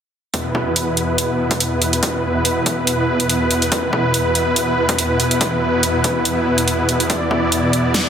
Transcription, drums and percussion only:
0, 0, Header, 1, 2, 480
1, 0, Start_track
1, 0, Tempo, 422535
1, 383, Time_signature, 4, 2, 24, 8
1, 9190, End_track
2, 0, Start_track
2, 0, Title_t, "Drums"
2, 382, Note_on_c, 9, 42, 75
2, 383, Note_on_c, 9, 36, 108
2, 496, Note_off_c, 9, 36, 0
2, 496, Note_off_c, 9, 42, 0
2, 623, Note_on_c, 9, 36, 58
2, 736, Note_off_c, 9, 36, 0
2, 863, Note_on_c, 9, 42, 74
2, 977, Note_off_c, 9, 42, 0
2, 1103, Note_on_c, 9, 42, 51
2, 1217, Note_off_c, 9, 42, 0
2, 1343, Note_on_c, 9, 42, 74
2, 1456, Note_off_c, 9, 42, 0
2, 1713, Note_on_c, 9, 36, 95
2, 1713, Note_on_c, 9, 42, 49
2, 1822, Note_off_c, 9, 42, 0
2, 1822, Note_on_c, 9, 42, 76
2, 1826, Note_off_c, 9, 36, 0
2, 1936, Note_off_c, 9, 42, 0
2, 2063, Note_on_c, 9, 42, 52
2, 2176, Note_off_c, 9, 42, 0
2, 2193, Note_on_c, 9, 42, 53
2, 2302, Note_off_c, 9, 42, 0
2, 2302, Note_on_c, 9, 42, 74
2, 2303, Note_on_c, 9, 36, 116
2, 2416, Note_off_c, 9, 36, 0
2, 2416, Note_off_c, 9, 42, 0
2, 2783, Note_on_c, 9, 42, 77
2, 2896, Note_off_c, 9, 42, 0
2, 3023, Note_on_c, 9, 36, 59
2, 3023, Note_on_c, 9, 42, 53
2, 3136, Note_off_c, 9, 36, 0
2, 3136, Note_off_c, 9, 42, 0
2, 3262, Note_on_c, 9, 42, 74
2, 3376, Note_off_c, 9, 42, 0
2, 3633, Note_on_c, 9, 42, 50
2, 3743, Note_off_c, 9, 42, 0
2, 3743, Note_on_c, 9, 42, 75
2, 3857, Note_off_c, 9, 42, 0
2, 3983, Note_on_c, 9, 42, 50
2, 4096, Note_off_c, 9, 42, 0
2, 4113, Note_on_c, 9, 42, 51
2, 4223, Note_off_c, 9, 42, 0
2, 4223, Note_on_c, 9, 36, 111
2, 4223, Note_on_c, 9, 42, 74
2, 4336, Note_off_c, 9, 36, 0
2, 4337, Note_off_c, 9, 42, 0
2, 4463, Note_on_c, 9, 36, 61
2, 4576, Note_off_c, 9, 36, 0
2, 4703, Note_on_c, 9, 42, 72
2, 4817, Note_off_c, 9, 42, 0
2, 4943, Note_on_c, 9, 42, 52
2, 5057, Note_off_c, 9, 42, 0
2, 5183, Note_on_c, 9, 42, 75
2, 5297, Note_off_c, 9, 42, 0
2, 5553, Note_on_c, 9, 36, 104
2, 5553, Note_on_c, 9, 42, 50
2, 5663, Note_off_c, 9, 42, 0
2, 5663, Note_on_c, 9, 42, 77
2, 5666, Note_off_c, 9, 36, 0
2, 5777, Note_off_c, 9, 42, 0
2, 5903, Note_on_c, 9, 42, 51
2, 6017, Note_off_c, 9, 42, 0
2, 6033, Note_on_c, 9, 42, 51
2, 6143, Note_off_c, 9, 42, 0
2, 6143, Note_on_c, 9, 36, 110
2, 6143, Note_on_c, 9, 42, 72
2, 6257, Note_off_c, 9, 36, 0
2, 6257, Note_off_c, 9, 42, 0
2, 6623, Note_on_c, 9, 42, 70
2, 6737, Note_off_c, 9, 42, 0
2, 6863, Note_on_c, 9, 36, 57
2, 6863, Note_on_c, 9, 42, 46
2, 6977, Note_off_c, 9, 36, 0
2, 6977, Note_off_c, 9, 42, 0
2, 7103, Note_on_c, 9, 42, 70
2, 7217, Note_off_c, 9, 42, 0
2, 7473, Note_on_c, 9, 42, 45
2, 7584, Note_off_c, 9, 42, 0
2, 7584, Note_on_c, 9, 42, 71
2, 7697, Note_off_c, 9, 42, 0
2, 7824, Note_on_c, 9, 42, 49
2, 7937, Note_off_c, 9, 42, 0
2, 7953, Note_on_c, 9, 42, 49
2, 8063, Note_off_c, 9, 42, 0
2, 8063, Note_on_c, 9, 36, 106
2, 8063, Note_on_c, 9, 42, 69
2, 8176, Note_off_c, 9, 36, 0
2, 8176, Note_off_c, 9, 42, 0
2, 8303, Note_on_c, 9, 36, 54
2, 8417, Note_off_c, 9, 36, 0
2, 8543, Note_on_c, 9, 42, 68
2, 8657, Note_off_c, 9, 42, 0
2, 8783, Note_on_c, 9, 42, 47
2, 8897, Note_off_c, 9, 42, 0
2, 9023, Note_on_c, 9, 38, 109
2, 9023, Note_on_c, 9, 42, 70
2, 9137, Note_off_c, 9, 38, 0
2, 9137, Note_off_c, 9, 42, 0
2, 9190, End_track
0, 0, End_of_file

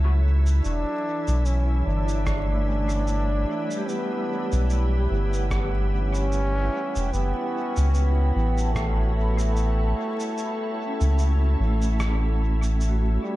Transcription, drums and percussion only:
0, 0, Header, 1, 2, 480
1, 0, Start_track
1, 0, Tempo, 810811
1, 383, Time_signature, 4, 2, 24, 8
1, 7910, End_track
2, 0, Start_track
2, 0, Title_t, "Drums"
2, 276, Note_on_c, 9, 82, 49
2, 335, Note_off_c, 9, 82, 0
2, 383, Note_on_c, 9, 82, 36
2, 442, Note_off_c, 9, 82, 0
2, 756, Note_on_c, 9, 82, 45
2, 815, Note_off_c, 9, 82, 0
2, 862, Note_on_c, 9, 82, 37
2, 921, Note_off_c, 9, 82, 0
2, 1235, Note_on_c, 9, 82, 47
2, 1295, Note_off_c, 9, 82, 0
2, 1340, Note_on_c, 9, 36, 95
2, 1342, Note_on_c, 9, 37, 83
2, 1342, Note_on_c, 9, 82, 37
2, 1399, Note_off_c, 9, 36, 0
2, 1401, Note_off_c, 9, 37, 0
2, 1401, Note_off_c, 9, 82, 0
2, 1714, Note_on_c, 9, 82, 46
2, 1773, Note_off_c, 9, 82, 0
2, 1820, Note_on_c, 9, 82, 37
2, 1880, Note_off_c, 9, 82, 0
2, 2196, Note_on_c, 9, 82, 47
2, 2255, Note_off_c, 9, 82, 0
2, 2303, Note_on_c, 9, 82, 35
2, 2362, Note_off_c, 9, 82, 0
2, 2678, Note_on_c, 9, 82, 47
2, 2737, Note_off_c, 9, 82, 0
2, 2783, Note_on_c, 9, 82, 37
2, 2842, Note_off_c, 9, 82, 0
2, 3158, Note_on_c, 9, 82, 45
2, 3217, Note_off_c, 9, 82, 0
2, 3260, Note_on_c, 9, 36, 91
2, 3263, Note_on_c, 9, 37, 82
2, 3263, Note_on_c, 9, 82, 35
2, 3320, Note_off_c, 9, 36, 0
2, 3322, Note_off_c, 9, 37, 0
2, 3322, Note_off_c, 9, 82, 0
2, 3639, Note_on_c, 9, 82, 46
2, 3699, Note_off_c, 9, 82, 0
2, 3744, Note_on_c, 9, 82, 37
2, 3803, Note_off_c, 9, 82, 0
2, 4119, Note_on_c, 9, 82, 47
2, 4178, Note_off_c, 9, 82, 0
2, 4226, Note_on_c, 9, 82, 38
2, 4285, Note_off_c, 9, 82, 0
2, 4599, Note_on_c, 9, 82, 48
2, 4658, Note_off_c, 9, 82, 0
2, 4704, Note_on_c, 9, 82, 38
2, 4763, Note_off_c, 9, 82, 0
2, 5079, Note_on_c, 9, 82, 49
2, 5138, Note_off_c, 9, 82, 0
2, 5182, Note_on_c, 9, 36, 89
2, 5185, Note_on_c, 9, 37, 79
2, 5185, Note_on_c, 9, 82, 39
2, 5241, Note_off_c, 9, 36, 0
2, 5244, Note_off_c, 9, 37, 0
2, 5244, Note_off_c, 9, 82, 0
2, 5559, Note_on_c, 9, 82, 49
2, 5618, Note_off_c, 9, 82, 0
2, 5664, Note_on_c, 9, 82, 38
2, 5723, Note_off_c, 9, 82, 0
2, 6039, Note_on_c, 9, 82, 50
2, 6098, Note_off_c, 9, 82, 0
2, 6145, Note_on_c, 9, 82, 39
2, 6204, Note_off_c, 9, 82, 0
2, 6518, Note_on_c, 9, 82, 49
2, 6577, Note_off_c, 9, 82, 0
2, 6623, Note_on_c, 9, 82, 39
2, 6682, Note_off_c, 9, 82, 0
2, 6997, Note_on_c, 9, 82, 50
2, 7057, Note_off_c, 9, 82, 0
2, 7104, Note_on_c, 9, 37, 82
2, 7104, Note_on_c, 9, 82, 41
2, 7163, Note_off_c, 9, 37, 0
2, 7163, Note_off_c, 9, 82, 0
2, 7477, Note_on_c, 9, 82, 52
2, 7536, Note_off_c, 9, 82, 0
2, 7583, Note_on_c, 9, 82, 41
2, 7642, Note_off_c, 9, 82, 0
2, 7910, End_track
0, 0, End_of_file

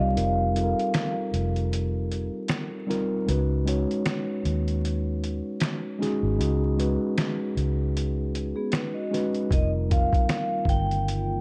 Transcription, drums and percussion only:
0, 0, Header, 1, 2, 480
1, 0, Start_track
1, 0, Tempo, 779221
1, 97, Time_signature, 4, 2, 24, 8
1, 7027, End_track
2, 0, Start_track
2, 0, Title_t, "Drums"
2, 105, Note_on_c, 9, 42, 85
2, 167, Note_off_c, 9, 42, 0
2, 345, Note_on_c, 9, 42, 69
2, 407, Note_off_c, 9, 42, 0
2, 489, Note_on_c, 9, 42, 32
2, 551, Note_off_c, 9, 42, 0
2, 578, Note_on_c, 9, 26, 67
2, 581, Note_on_c, 9, 42, 77
2, 583, Note_on_c, 9, 38, 105
2, 640, Note_off_c, 9, 26, 0
2, 642, Note_off_c, 9, 42, 0
2, 644, Note_off_c, 9, 38, 0
2, 824, Note_on_c, 9, 42, 57
2, 886, Note_off_c, 9, 42, 0
2, 962, Note_on_c, 9, 42, 34
2, 1023, Note_off_c, 9, 42, 0
2, 1066, Note_on_c, 9, 42, 74
2, 1127, Note_off_c, 9, 42, 0
2, 1303, Note_on_c, 9, 42, 54
2, 1365, Note_off_c, 9, 42, 0
2, 1530, Note_on_c, 9, 42, 78
2, 1537, Note_on_c, 9, 38, 107
2, 1547, Note_on_c, 9, 26, 72
2, 1591, Note_off_c, 9, 42, 0
2, 1598, Note_off_c, 9, 38, 0
2, 1609, Note_off_c, 9, 26, 0
2, 1789, Note_on_c, 9, 38, 33
2, 1791, Note_on_c, 9, 42, 52
2, 1850, Note_off_c, 9, 38, 0
2, 1852, Note_off_c, 9, 42, 0
2, 2024, Note_on_c, 9, 42, 83
2, 2086, Note_off_c, 9, 42, 0
2, 2263, Note_on_c, 9, 42, 76
2, 2325, Note_off_c, 9, 42, 0
2, 2408, Note_on_c, 9, 42, 33
2, 2470, Note_off_c, 9, 42, 0
2, 2498, Note_on_c, 9, 42, 82
2, 2500, Note_on_c, 9, 38, 109
2, 2502, Note_on_c, 9, 26, 65
2, 2560, Note_off_c, 9, 42, 0
2, 2562, Note_off_c, 9, 38, 0
2, 2564, Note_off_c, 9, 26, 0
2, 2743, Note_on_c, 9, 42, 54
2, 2805, Note_off_c, 9, 42, 0
2, 2882, Note_on_c, 9, 42, 38
2, 2943, Note_off_c, 9, 42, 0
2, 2987, Note_on_c, 9, 42, 69
2, 3049, Note_off_c, 9, 42, 0
2, 3225, Note_on_c, 9, 42, 50
2, 3287, Note_off_c, 9, 42, 0
2, 3452, Note_on_c, 9, 42, 78
2, 3459, Note_on_c, 9, 38, 95
2, 3470, Note_on_c, 9, 26, 78
2, 3513, Note_off_c, 9, 42, 0
2, 3520, Note_off_c, 9, 38, 0
2, 3532, Note_off_c, 9, 26, 0
2, 3711, Note_on_c, 9, 38, 32
2, 3713, Note_on_c, 9, 42, 58
2, 3772, Note_off_c, 9, 38, 0
2, 3774, Note_off_c, 9, 42, 0
2, 3947, Note_on_c, 9, 42, 76
2, 4008, Note_off_c, 9, 42, 0
2, 4186, Note_on_c, 9, 42, 71
2, 4248, Note_off_c, 9, 42, 0
2, 4420, Note_on_c, 9, 42, 80
2, 4422, Note_on_c, 9, 26, 66
2, 4423, Note_on_c, 9, 38, 110
2, 4482, Note_off_c, 9, 42, 0
2, 4483, Note_off_c, 9, 26, 0
2, 4484, Note_off_c, 9, 38, 0
2, 4666, Note_on_c, 9, 42, 57
2, 4727, Note_off_c, 9, 42, 0
2, 4908, Note_on_c, 9, 42, 69
2, 4969, Note_off_c, 9, 42, 0
2, 5144, Note_on_c, 9, 42, 57
2, 5206, Note_off_c, 9, 42, 0
2, 5371, Note_on_c, 9, 42, 76
2, 5378, Note_on_c, 9, 38, 100
2, 5389, Note_on_c, 9, 26, 77
2, 5432, Note_off_c, 9, 42, 0
2, 5439, Note_off_c, 9, 38, 0
2, 5450, Note_off_c, 9, 26, 0
2, 5630, Note_on_c, 9, 38, 36
2, 5632, Note_on_c, 9, 42, 56
2, 5691, Note_off_c, 9, 38, 0
2, 5693, Note_off_c, 9, 42, 0
2, 5756, Note_on_c, 9, 42, 33
2, 5818, Note_off_c, 9, 42, 0
2, 5856, Note_on_c, 9, 36, 99
2, 5865, Note_on_c, 9, 42, 74
2, 5918, Note_off_c, 9, 36, 0
2, 5926, Note_off_c, 9, 42, 0
2, 6105, Note_on_c, 9, 42, 70
2, 6107, Note_on_c, 9, 36, 92
2, 6167, Note_off_c, 9, 42, 0
2, 6169, Note_off_c, 9, 36, 0
2, 6238, Note_on_c, 9, 36, 92
2, 6249, Note_on_c, 9, 42, 34
2, 6300, Note_off_c, 9, 36, 0
2, 6310, Note_off_c, 9, 42, 0
2, 6339, Note_on_c, 9, 42, 80
2, 6340, Note_on_c, 9, 26, 70
2, 6341, Note_on_c, 9, 38, 108
2, 6401, Note_off_c, 9, 42, 0
2, 6402, Note_off_c, 9, 26, 0
2, 6403, Note_off_c, 9, 38, 0
2, 6562, Note_on_c, 9, 36, 86
2, 6585, Note_on_c, 9, 42, 52
2, 6623, Note_off_c, 9, 36, 0
2, 6646, Note_off_c, 9, 42, 0
2, 6722, Note_on_c, 9, 42, 37
2, 6784, Note_off_c, 9, 42, 0
2, 6827, Note_on_c, 9, 42, 72
2, 6889, Note_off_c, 9, 42, 0
2, 7027, End_track
0, 0, End_of_file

